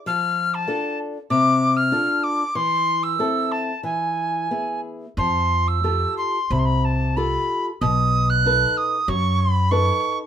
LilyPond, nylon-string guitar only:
\new Staff \with { instrumentName = "Nylon-string guitar" } { \time 4/4 \key f \lydian \tempo 4 = 94 f4 <d' f' a'>4 c4 <d' f' a'>4 | e4 <c' e' a'>4 e4 <b e' gis'>4 | f4 <f' g' a'>4 c4 <f' g' a'>4 | b,4 <dis' a' b'>4 fis4 <dis' a' b'>4 | }